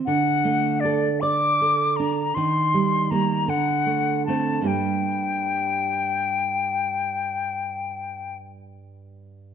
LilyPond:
<<
  \new Staff \with { instrumentName = "Flute" } { \time 12/8 \key g \minor \tempo 4. = 50 fis''4 d''8 d'''4 bes''8 c'''4 bes''8 fis''4 a''8 | g''1~ g''8 r4. | }
  \new Staff \with { instrumentName = "Nylon-string guitar" } { \time 12/8 \key g \minor d8 a8 a'8 d''8 a'8 d'8 ees8 g8 <g bes>8 d8 a8 <a c'>8 | <g, g bes>1. | }
>>